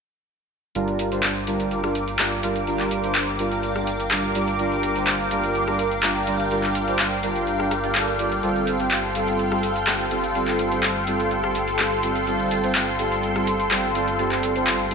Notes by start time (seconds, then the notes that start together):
0.75 G1 G3 D4 F4 A#4 F5 G5 D6, closed hi-hat
0.88 closed hi-hat
0.99 closed hi-hat
1.12 G3 D4 F4 C5, closed hi-hat
1.23 clap, closed hi-hat
1.36 closed hi-hat
1.47 G3 D4 F4 A#4, closed hi-hat
1.60 closed hi-hat
1.71 closed hi-hat
1.84 G3 D4 F4 A#4, cross-stick, closed hi-hat
1.95 closed hi-hat
2.08 closed hi-hat
2.19 G3 D4 F4 A#4, cross-stick, clap, closed hi-hat
2.32 closed hi-hat
2.43 G3 D4 F4 A#4, closed hi-hat
2.56 closed hi-hat
2.67 G3 D4 F4 A#4, closed hi-hat
2.80 clap, closed hi-hat
2.91 closed hi-hat
3.04 G3 D4 F4 C5, closed hi-hat
3.15 clap, closed hi-hat
3.28 closed hi-hat
3.39 G3 D4 F4 A#4, closed hi-hat
3.52 closed hi-hat
3.63 closed hi-hat
3.76 G3 D4 F4 A#4, cross-stick, closed hi-hat
3.87 closed hi-hat
4.00 closed hi-hat
4.11 G3 D4 F4 A#4, cross-stick, clap, closed hi-hat
4.24 closed hi-hat
4.35 G3 D4 F4 A#4, closed hi-hat
4.48 closed hi-hat
4.59 G3 D4 F4 A#4, closed hi-hat
4.72 closed hi-hat
4.83 closed hi-hat
4.96 G3 D4 F4 C5, closed hi-hat
5.07 clap, closed hi-hat
5.20 closed hi-hat
5.31 G3 D4 F4 A#4, closed hi-hat
5.44 closed hi-hat
5.55 closed hi-hat
5.68 G3 D4 F4 A#4, cross-stick, closed hi-hat
5.79 closed hi-hat
5.92 closed hi-hat
6.03 G3 D4 F4 A#4, cross-stick, clap, closed hi-hat
6.16 closed hi-hat
6.27 G3 D4 F4 A#4, closed hi-hat
6.40 closed hi-hat
6.51 G3 D4 F4 A#4, closed hi-hat
6.63 clap, closed hi-hat
6.75 closed hi-hat
6.88 G3 D4 F4 C5, closed hi-hat
6.99 clap, closed hi-hat
7.12 closed hi-hat
7.23 G3 D4 F4 A#4, closed hi-hat
7.36 closed hi-hat
7.47 closed hi-hat
7.60 G3 D4 F4 A#4, cross-stick, closed hi-hat
7.71 cross-stick, closed hi-hat
7.84 G3 D4 F4 D5, closed hi-hat
7.95 G3 D4 F4 A4, cross-stick, clap, closed hi-hat
8.08 closed hi-hat
8.19 G3 D4 F4 D5, closed hi-hat
8.32 closed hi-hat
8.43 G1 G3 C4 F4 A4 C6, closed hi-hat
8.56 closed hi-hat
8.67 closed hi-hat
8.80 G3 C4 F4 C5, closed hi-hat
8.91 clap, closed hi-hat
9.04 closed hi-hat
9.15 G3 C4 F4 A4, closed hi-hat
9.28 closed hi-hat
9.39 closed hi-hat
9.52 G3 C4 F4 A4, cross-stick, closed hi-hat
9.63 closed hi-hat
9.76 closed hi-hat
9.87 G3 C4 F4 A4, cross-stick, clap, closed hi-hat
10.00 closed hi-hat
10.11 G3 C4 F4 A4, closed hi-hat
10.24 closed hi-hat
10.35 G3 C4 F4 A4, closed hi-hat
10.48 clap, closed hi-hat
10.59 closed hi-hat
10.72 G3 C4 F4 C5, closed hi-hat
10.83 clap, closed hi-hat
10.96 closed hi-hat
11.07 G3 C4 F4 A4, closed hi-hat
11.20 closed hi-hat
11.31 closed hi-hat
11.44 G3 C4 F4 A4, cross-stick, closed hi-hat
11.55 closed hi-hat
11.68 closed hi-hat
11.79 G3 C4 F4 A4, cross-stick, clap, closed hi-hat
11.92 closed hi-hat
12.03 G3 C4 F4 A4, closed hi-hat
12.16 closed hi-hat
12.27 G3 C4 F4 A4, closed hi-hat
12.40 closed hi-hat
12.51 closed hi-hat
12.64 G3 C4 F4 C5, closed hi-hat
12.75 clap, closed hi-hat
12.88 closed hi-hat
12.99 G3 C4 F4 A4, closed hi-hat
13.12 closed hi-hat
13.23 closed hi-hat
13.36 G3 C4 F4 A4, cross-stick, closed hi-hat
13.47 closed hi-hat
13.60 closed hi-hat
13.71 G3 C4 F4 A4, cross-stick, clap, closed hi-hat
13.84 closed hi-hat
13.95 G3 C4 F4 A4, closed hi-hat
14.08 closed hi-hat
14.19 G3 C4 F4 A4, closed hi-hat
14.32 clap, closed hi-hat
14.43 closed hi-hat
14.56 G3 C4 F4 C5, closed hi-hat
14.67 clap, closed hi-hat
14.80 closed hi-hat
14.91 G3 C4 F4 A4, closed hi-hat